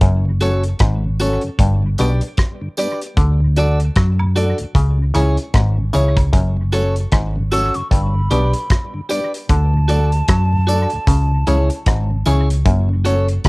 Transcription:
0.01 fingered electric bass F#1, clav F#2, kick, closed hi-hat
0.25 tonewheel organ F#2 C#3
0.41 tonewheel organ F#3 A3 C#4, grand piano C#4 F#4 A4 C#5, clean electric guitar F#4 A4 C#5, closed hi-hat, tambourine
0.64 closed hi-hat
0.79 fingered electric bass G#1, clav G#2, kick, cross-stick, closed hi-hat
1.04 tonewheel organ F#2 C#3
1.19 tonewheel organ F#3 A3 C#4, grand piano C#4 F#4 A4 C#5, clean electric guitar F#4 A4 C#5, closed hi-hat, tambourine
1.41 tonewheel organ F#2 C#3, closed hi-hat
1.59 fingered electric bass G1, clav G2, kick, closed hi-hat
1.83 tonewheel organ G2 D3
1.98 fingered electric bass B1, clav B2, tonewheel organ G3 B3 D4, grand piano D4 G4 B4 D5, clean electric guitar G4 B4 D5, closed hi-hat, tambourine
2.21 muted clean electric guitar stroke, closed hi-hat
2.37 kick, cross-stick, closed hi-hat
2.61 tonewheel organ G2 D3
2.77 tonewheel organ G3 B3 D4, grand piano D4 G4 B4 D5, clean electric guitar G4 B4 D5, closed hi-hat, tambourine
3.02 closed hi-hat
3.17 fingered electric bass D2, clav D3, kick, closed hi-hat
3.40 tonewheel organ D2 A2
3.56 tonewheel organ F#3 A3 D4, grand piano D4 F#4 A4 D5, clean electric guitar F#4 A4 D5, closed hi-hat, tambourine
3.80 closed hi-hat
3.96 fingered electric bass F#2, clav F#3, kick, cross-stick, closed hi-hat
4.19 tonewheel organ D2 A2, high woodblock
4.36 tonewheel organ F#3 A3 D4, grand piano D4 F#4 A4 D5, clean electric guitar F#4 A4 D5, closed hi-hat, tambourine
4.58 tonewheel organ D2 A2, closed hi-hat
4.75 fingered electric bass C#2, clav C#3, kick, closed hi-hat
4.98 tonewheel organ C#3
5.14 fingered electric bass C#2, clav C#3, tonewheel organ E3 G#3 C#4, grand piano C#4 E4 G#4 C#5, clean electric guitar E4 G#4 C#5, closed hi-hat, tambourine, high woodblock
5.37 muted clean electric guitar stroke, closed hi-hat
5.54 fingered electric bass G#1, clav G#2, kick, cross-stick, closed hi-hat
5.78 tonewheel organ C#3
5.93 fingered electric bass C#2, clav C#3, tonewheel organ E3 G#3 C#4, grand piano C#4 E4 G#4 C#5, clean electric guitar E4 G#4 C#5, closed hi-hat, tambourine
6.17 kick, closed hi-hat, high woodblock
6.33 fingered electric bass F#1, clav F#2, kick, closed hi-hat
6.57 tonewheel organ F#2 C#3
6.72 tonewheel organ F#3 A3 C#4, grand piano C#4 F#4 A4 C#5, clean electric guitar F#4 A4 C#5, closed hi-hat, tambourine
6.96 closed hi-hat
7.12 fingered electric bass G#1, clav G#2, kick, cross-stick, closed hi-hat
7.36 tonewheel organ F#2 C#3
7.51 tonewheel organ F#3 A3 C#4, grand piano C#4 F#4 A4 C#5, clean electric guitar F#4 A4 C#5, flute E6, closed hi-hat, tambourine
7.74 tonewheel organ F#2 C#3, flute C#6, closed hi-hat
7.91 fingered electric bass G1, clav G2, flute B5, kick, closed hi-hat
8.14 tonewheel organ G2 D3
8.30 fingered electric bass B1, clav B2, tonewheel organ G3 B3 D4, grand piano D4 G4 B4 D5, clean electric guitar G4 B4 D5, closed hi-hat, tambourine
8.53 muted clean electric guitar stroke, closed hi-hat
8.70 kick, cross-stick, closed hi-hat
8.94 tonewheel organ G2 D3
9.09 tonewheel organ G3 B3 D4, grand piano D4 G4 B4 D5, clean electric guitar G4 B4 D5, closed hi-hat, tambourine
9.34 closed hi-hat
9.49 fingered electric bass D2, clav D3, flute A5, kick, closed hi-hat
9.74 tonewheel organ D2 A2
9.88 tonewheel organ F#3 A3 D4, grand piano D4 F#4 A4 D5, clean electric guitar F#4 A4 D5, closed hi-hat, tambourine
10.12 closed hi-hat
10.28 fingered electric bass F#2, clav F#3, kick, cross-stick, closed hi-hat
10.53 tonewheel organ D2 A2
10.67 tonewheel organ F#3 A3 D4, grand piano D4 F#4 A4 D5, clean electric guitar F#4 A4 D5, closed hi-hat, tambourine
10.90 tonewheel organ D2 A2, closed hi-hat
11.07 fingered electric bass C#2, clav C#3, kick, closed hi-hat
11.31 tonewheel organ C#3
11.47 fingered electric bass C#2, clav C#3, tonewheel organ E3 G#3 C#4, grand piano C#4 E4 G#4 C#5, clean electric guitar E4 G#4 C#5, closed hi-hat, tambourine
11.70 muted clean electric guitar stroke, closed hi-hat
11.86 fingered electric bass G#1, clav G#2, kick, cross-stick, closed hi-hat
12.11 tonewheel organ C#3
12.25 fingered electric bass C#2, clav C#3, tonewheel organ E3 G#3 C#4, grand piano C#4 E4 G#4 C#5, clean electric guitar E4 G#4 C#5, closed hi-hat, tambourine
12.50 closed hi-hat
12.65 fingered electric bass F#1, clav F#2, kick, closed hi-hat
12.89 tonewheel organ F#2 C#3
13.05 tonewheel organ F#3 A3 C#4, grand piano C#4 F#4 A4 C#5, clean electric guitar F#4 A4 C#5, closed hi-hat, tambourine
13.28 closed hi-hat
13.44 fingered electric bass G#1, clav G#2, kick, cross-stick, closed hi-hat

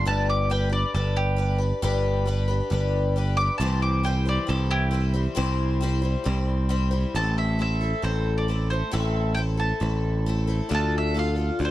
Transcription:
0.05 picked electric bass G1, twelve-string acoustic guitar G3 D4 G4 B4, mandolin A5
0.30 mandolin D6
0.50 twelve-string acoustic guitar G3 D4 G4 B4, mandolin G5
0.69 twelve-string acoustic guitar D4 G4 B4, mandolin D5
0.94 picked electric bass G1, twelve-string acoustic guitar G3 D4 G4 B4, mandolin A4
1.17 mandolin G4
1.36 twelve-string acoustic guitar G3 D4 G4 B4
1.58 twelve-string acoustic guitar D4 G4 B4
1.82 picked electric bass G1, twelve-string acoustic guitar G3 D4 G4 B4
2.25 twelve-string acoustic guitar G3 D4 G4 B4
2.48 twelve-string acoustic guitar D4 G4 B4
2.70 picked electric bass G1, twelve-string acoustic guitar G3 D4 G4 B4
3.16 twelve-string acoustic guitar G3 D4 G4 B4
3.37 twelve-string acoustic guitar G4 B4, mandolin D6
3.41 twelve-string acoustic guitar D4
3.58 picked electric bass C2, twelve-string acoustic guitar C3 E3 G3 C4 E4, mandolin A5
3.62 twelve-string acoustic guitar C5
3.82 mandolin D6
4.03 twelve-string acoustic guitar G3 C4 E4 C5, mandolin G5
4.25 twelve-string acoustic guitar G3 C4 E4 C5, mandolin D5
4.47 picked electric bass C2, twelve-string acoustic guitar G3 C4 E4 C5, mandolin A4
4.71 mandolin E4 G4
4.91 twelve-string acoustic guitar G3 C4 E4 C5
5.14 twelve-string acoustic guitar G3 C4 E4 C5
5.35 picked electric bass C2, twelve-string acoustic guitar C3 E3 G3 C4 E4 C5
5.81 twelve-string acoustic guitar G3 C4 E4 C5
6.02 twelve-string acoustic guitar G3 C4 E4 C5
6.24 picked electric bass C2, twelve-string acoustic guitar G3 C4 E4 C5
6.69 twelve-string acoustic guitar G3 C4 E4 C5
6.91 twelve-string acoustic guitar G3 C4 E4 C5
7.15 picked electric bass A1, twelve-string acoustic guitar A2 E3 A3 C4 E4 A4, mandolin A5
7.38 mandolin E5
7.59 twelve-string acoustic guitar A3 C4 E4 A4, mandolin E5
7.81 twelve-string acoustic guitar A3 C4 E4 A4
8.02 picked electric bass A1, twelve-string acoustic guitar A3 C4 E4 A4, mandolin C5
8.38 mandolin D5
8.48 twelve-string acoustic guitar A3 C4 E4 A4
8.70 twelve-string acoustic guitar A3 C4 E4 A4, mandolin C5
8.91 picked electric bass A1, twelve-string acoustic guitar A2 E3 A3 C4 E4 A4, mandolin E5
9.35 twelve-string acoustic guitar A3 C4 E4, mandolin G5
9.39 twelve-string acoustic guitar A4
9.57 twelve-string acoustic guitar A3 C4 E4 A4, mandolin A5
9.80 picked electric bass A1, twelve-string acoustic guitar A3 C4 E4 A4
10.26 twelve-string acoustic guitar A3 C4 E4 A4
10.47 twelve-string acoustic guitar A3 C4 E4 A4
10.69 picked electric bass D2, twelve-string acoustic guitar D3 A3 D4 F4 A4
10.75 mandolin A5
10.98 mandolin E5
11.14 twelve-string acoustic guitar A3 D4 F4 A4
11.19 mandolin F5
11.36 twelve-string acoustic guitar D4 F4 A4
11.59 picked electric bass D2, twelve-string acoustic guitar A3 D4 F4 A4
11.65 mandolin C5

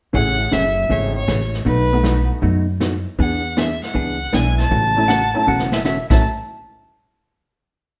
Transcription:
0.13 upright bass A1, hollow-body jazz guitar C#3 E3 A3 C#4 G#4, honky-tonk piano A3 C#4 E4 G#4, fiddle F#5, brush sweep, kick
0.51 upright bass F#1, hollow-body jazz guitar C#3 E3 A3 C#4 G#4, fiddle E5, snare, hi-hat pedal
0.90 upright bass G#1, hollow-body jazz guitar C#3 E3 A3 C#4 G#4, fiddle C#5, brush sweep, kick
1.15 fiddle C#5
1.28 upright bass A1, hollow-body jazz guitar C#3 E3 A3 C#4 G#4, snare, hi-hat pedal
1.54 snare
1.65 upright bass B1, hollow-body jazz guitar B2 F#3 A3 D#4 F#4, fiddle B4, brush sweep, kick
1.92 honky-tonk piano A3 B3 D#4 F#4
2.03 hollow-body jazz guitar B2 F#3 A3 D#4 F#4, snare, hi-hat pedal
2.42 upright bass F#2, hollow-body jazz guitar B2 F#3 A3 D#4 F#4, brush sweep, kick
2.80 hollow-body jazz guitar B2 F#3 A3 D#4 F#4, snare, hi-hat pedal
3.19 upright bass E2, hollow-body jazz guitar E3 B3 D4 G#4, fiddle F#5, brush sweep, kick
3.57 hollow-body jazz guitar E3 B3 D4 G#4, fiddle E5, snare, hi-hat pedal
3.83 fiddle F#5, snare
3.94 upright bass C#2, hollow-body jazz guitar E3 B3 D4 G#4, brush sweep, kick
4.33 upright bass B1, hollow-body jazz guitar E3 B3 D4 G#4, honky-tonk piano G#3 B3 D4 E4, fiddle G#5, snare, hi-hat pedal
4.59 fiddle A5, snare
4.71 upright bass A1, hollow-body jazz guitar C#3 E3 A3 C#4 F#4, brush sweep, kick
4.96 honky-tonk piano F#3 A3 C#4 E4
5.08 hollow-body jazz guitar C#3 E3 A3 C#4 F#4, electric slide guitar F#5, snare, hi-hat pedal
5.34 honky-tonk piano F#3 A3 C#4 E4, electric slide guitar A5
5.47 upright bass E1, hollow-body jazz guitar C#3 E3 A3 C#4 F#4, electric slide guitar F#5
5.59 snare
5.72 electric slide guitar E5, snare
5.84 hollow-body jazz guitar C#3 E3 A3 C#4 F#4, electric slide guitar E5, snare, hi-hat pedal
6.10 upright bass A1, hollow-body jazz guitar A2 C#3 E3 A3 C#4 F#4, honky-tonk piano F#3 A3 C#4 E4, electric slide guitar E5, fiddle A5, kick, snare, crash

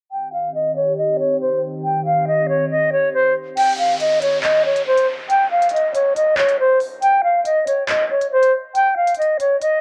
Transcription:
0.11 ambient pad D#3 C4 G4, flute G5
0.33 flute F5
0.55 flute D#5
0.76 flute C#5
0.98 flute D#5
1.20 flute C#5
1.41 flute C5
1.84 flute G5
2.06 flute F5
2.27 flute D#5
2.49 flute C#5
2.71 flute D#5
2.92 flute C#5
3.14 flute C5
3.57 flute G5, closed hi-hat, crash, downlifter
3.78 flute F5
4.00 flute D#5, closed hi-hat
4.22 flute C#5, closed hi-hat
4.43 flute D#5, clap, closed hi-hat
4.65 flute C#5
4.76 closed hi-hat
4.86 flute C5
4.97 closed hi-hat
5.30 flute G5, closed hi-hat
5.51 flute F5
5.62 closed hi-hat
5.69 flute D#5, closed hi-hat
5.76 closed hi-hat
5.94 flute C#5, closed hi-hat
6.16 flute D#5, closed hi-hat
6.38 flute C#5, clap
6.49 closed hi-hat
6.59 flute C5
6.80 open hi-hat
7.02 flute G5, closed hi-hat
7.24 flute F5
7.45 flute D#5, closed hi-hat
7.67 flute C#5, closed hi-hat
7.89 flute D#5, clap, closed hi-hat
8.10 flute C#5
8.21 closed hi-hat
8.32 flute C5
8.43 closed hi-hat
8.75 flute G5, closed hi-hat
8.97 flute F5
9.07 closed hi-hat
9.14 flute D#5, closed hi-hat
9.22 closed hi-hat
9.40 flute C#5, closed hi-hat
9.61 flute D#5, closed hi-hat

